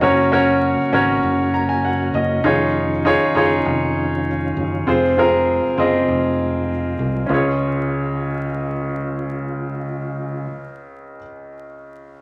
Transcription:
0.00 0.73 F#1 medium
0.00 2.43 C#3 medium
0.00 2.41 A#3 medium
0.00 0.24 C#4 medium
0.00 2.41 F#4 medium
0.00 0.25 F#4 medium
0.00 0.25 A#4 medium
0.00 0.25 C#5 medium
0.32 0.78 C#4 medium
0.32 0.78 F#4 medium
0.32 0.78 A#4 medium
0.32 0.78 C#5 medium
0.93 1.21 G#1 medium
0.93 1.84 C#4 medium
0.93 1.84 F#4 medium
0.93 1.85 A#4 medium
0.93 1.85 C#5 medium
1.23 2.10 F#1 medium
1.54 1.68 A#5 medium
1.69 1.83 G#5 medium
1.85 2.12 F#5 medium
2.14 2.42 F#1 medium
2.14 2.42 D#5 medium
2.44 3.16 F1 medium
2.44 4.85 D#3 medium
2.44 4.85 C#4 soft
2.44 2.90 D#4 medium
2.44 2.90 F4 medium
2.44 7.26 F4 medium
2.44 2.90 G#4 medium
2.44 2.91 C#5 medium
3.05 3.28 D#4 medium
3.05 3.28 F4 medium
3.05 3.28 G#4 medium
3.05 3.29 C#5 medium
3.35 3.63 F#1 medium
3.35 4.27 D#4 medium
3.35 4.27 F4 medium
3.35 4.28 G#4 medium
3.35 4.28 C#5 medium
3.65 4.52 F1 medium
4.57 4.85 F#1 medium
4.87 5.59 F1 medium
4.87 7.28 C3 medium
4.87 7.28 G#3 soft
4.87 5.10 C4 medium
4.87 5.10 F4 medium
4.87 5.10 G#4 medium
4.87 5.10 C5 medium
5.17 5.63 C4 medium
5.17 5.63 F4 medium
5.17 5.64 G#4 medium
5.17 5.64 A#4 medium
5.78 6.06 F#1 medium
5.78 6.69 C4 medium
5.78 6.70 F4 medium
5.78 6.70 G#4 medium
5.78 6.70 D#5 medium
6.08 6.95 F1 medium
6.99 7.27 C2 medium
7.26 11.18 C#2 medium
7.26 11.16 C#4 medium
7.26 11.18 F4 soft
7.30 10.48 C#3 soft
7.30 10.49 G#3 soft
7.30 10.49 F4 medium
7.30 11.19 G#4 soft
7.30 11.20 C#5 medium

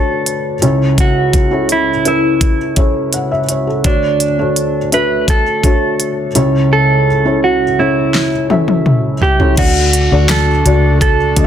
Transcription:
0.00 0.58 D2 soft
0.00 0.58 D3 soft
0.00 0.65 D4 medium
0.00 0.64 F#4 medium
0.00 0.62 A4 medium
0.00 1.00 A4 medium
0.00 0.65 B4 medium
0.00 0.62 C#5 medium
0.26 closed hi-hat medium
0.62 3.45 C#2 medium
0.62 3.45 C#3 medium
0.62 1.34 C#4 medium
0.62 1.34 E4 medium
0.62 1.34 A4 medium
0.62 1.34 C#5 medium
0.62 closed hi-hat medium
0.98 1.72 F#4 medium
0.98 kick medium
0.98 closed hi-hat medium
1.33 kick medium
1.33 closed hi-hat medium
1.51 1.89 C#4 medium
1.51 1.89 E4 medium
1.51 1.89 A4 medium
1.51 1.90 C#5 medium
1.69 2.07 E4 medium
1.69 closed hi-hat medium
2.05 2.56 C#4 medium
2.05 2.56 E4 medium
2.05 2.74 E4 medium
2.05 2.56 A4 medium
2.05 2.56 B4 medium
2.05 closed hi-hat medium
2.41 kick medium
2.41 closed hi-hat medium
2.76 3.40 C#4 medium
2.76 3.40 E4 medium
2.76 3.13 A4 medium
2.76 3.13 C#5 medium
2.76 kick medium
2.76 closed hi-hat medium
3.13 3.30 F#5 medium
3.13 closed hi-hat medium
3.32 3.48 E5 medium
3.49 3.66 C#5 medium
3.49 closed hi-hat medium
3.67 3.83 A4 medium
3.84 6.31 D2 soft
3.84 6.31 D3 soft
3.84 4.22 D4 medium
3.84 4.89 D4 medium
3.84 4.22 F#4 medium
3.84 4.22 A4 soft
3.84 4.23 C#5 medium
3.84 kick medium
3.84 closed hi-hat medium
4.20 closed hi-hat medium
4.39 4.76 D4 medium
4.39 4.77 F#4 medium
4.39 4.77 A4 medium
4.39 4.77 C#5 medium
4.56 closed hi-hat medium
4.92 5.43 D4 medium
4.92 5.43 F#4 medium
4.92 5.43 A4 medium
4.92 5.26 B4 medium
4.92 5.43 E5 medium
4.92 closed hi-hat medium
5.28 6.71 A4 medium
5.28 kick medium
5.28 closed hi-hat medium
5.64 6.27 D4 medium
5.64 6.27 F#4 medium
5.64 6.27 A4 medium
5.64 6.27 C#5 medium
5.64 kick medium
5.64 closed hi-hat medium
6.00 closed hi-hat medium
6.35 9.18 C#2 medium
6.35 9.18 C#3 medium
6.35 7.07 C#4 medium
6.35 7.07 E4 medium
6.35 7.07 A4 medium
6.35 7.07 C#5 medium
6.35 closed hi-hat medium
6.73 7.40 A4 medium
7.25 7.63 C#4 medium
7.25 7.63 E4 medium
7.25 7.63 A4 medium
7.25 7.63 C#5 medium
7.44 7.80 F#4 medium
7.79 8.29 C#4 medium
7.79 8.29 E4 soft
7.79 8.47 E4 medium
7.79 8.29 A4 medium
7.79 8.30 C#5 medium
8.14 snare soft
8.50 9.13 C#4 medium
8.50 9.13 E4 medium
8.50 9.14 A4 medium
8.50 9.14 E5 medium
8.50 high tom medium
8.68 high tom medium
8.86 mid tom medium
9.22 9.58 G4 medium
9.22 floor tom medium
9.39 9.52 C#4 medium
9.39 9.52 E4 medium
9.39 9.52 A4 medium
9.39 9.53 C#5 medium
9.39 floor tom medium
9.57 10.08 D2 loud
9.57 10.61 D3 medium
9.57 11.47 A3 medium
9.57 9.95 D4 medium
9.57 11.47 D4 medium
9.57 9.96 F#4 medium
9.57 11.47 F#4 medium
9.57 10.30 F#4 medium
9.57 9.96 A4 medium
9.57 9.96 D5 medium
9.57 kick loud
9.57 closed hi-hat medium
9.57 crash medium
9.93 closed hi-hat medium
10.12 10.62 D2 medium
10.12 10.49 D4 medium
10.12 10.50 F#4 medium
10.12 10.50 A4 medium
10.12 10.50 D5 medium
10.29 10.98 A4 medium
10.29 snare loud
10.29 clap medium
10.29 closed hi-hat medium
10.65 11.33 C#2 medium
10.65 11.16 D4 medium
10.65 11.16 F#4 medium
10.65 11.16 A4 medium
10.65 11.16 D5 medium
10.65 closed hi-hat medium
11.01 11.47 A4 medium
11.01 kick medium
11.01 closed hi-hat medium
11.36 11.47 D2 medium
11.36 11.47 D4 medium
11.36 11.47 F#4 medium
11.36 11.47 A4 medium
11.36 11.44 D#5 medium
11.36 kick medium
11.36 closed hi-hat medium

